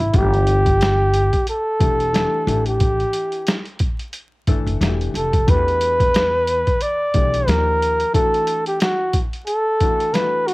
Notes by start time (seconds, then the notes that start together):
Already playing: E4
0.00 G#1
0.13 G1 E3 A3 D4 G4, kick, closed hi-hat
0.34 closed hi-hat
0.47 closed hi-hat
0.66 kick, closed hi-hat
0.81 snare, closed hi-hat
1.14 closed hi-hat
1.33 kick, closed hi-hat
1.47 A4, closed hi-hat
1.79 E1 E3 A3 D4 G4, kick, closed hi-hat
2.00 closed hi-hat
2.13 E3 A3 D4 G4, snare, closed hi-hat
2.47 A1 E3 A3 D4 G4, closed hi-hat
2.66 G4, closed hi-hat
2.80 kick, closed hi-hat
3.00 closed hi-hat
3.13 closed hi-hat
3.32 closed hi-hat
3.47 snare, closed hi-hat
3.66 closed hi-hat
3.79 kick, closed hi-hat
3.99 closed hi-hat
4.13 closed hi-hat
4.47 G1 E3 A3 D4 A4, kick, closed hi-hat
4.67 F#1, closed hi-hat
4.80 E1 E3 A3 D4 F#4, snare, closed hi-hat
4.88 G4
5.01 closed hi-hat
5.14 F1 A4, closed hi-hat
5.33 kick, closed hi-hat
5.47 E2 E3 A3 D4 G4 B4, kick, closed hi-hat
5.68 closed hi-hat
5.81 closed hi-hat
6.00 kick, closed hi-hat
6.14 snare, closed hi-hat
6.47 closed hi-hat
6.67 kick, closed hi-hat
6.81 D5, closed hi-hat
7.14 B1 E3 A3 D4 G4, kick, closed hi-hat
7.34 closed hi-hat
7.46 D#2 F3 A#3 D#4 G4 A#4, snare, closed hi-hat
7.82 closed hi-hat
8.00 closed hi-hat
8.13 E3 A3 D4 F#4 A4, kick, closed hi-hat
8.34 closed hi-hat
8.47 closed hi-hat
8.66 G4, closed hi-hat
8.80 F#4, snare, closed hi-hat
9.13 kick, closed hi-hat
9.33 closed hi-hat
9.47 A4, closed hi-hat
9.80 E3 A3 D4 F#4, kick, closed hi-hat
10.00 closed hi-hat
10.13 E3 A3 D4 F4 B4, snare, closed hi-hat
10.21 F#4
10.48 F#4, closed hi-hat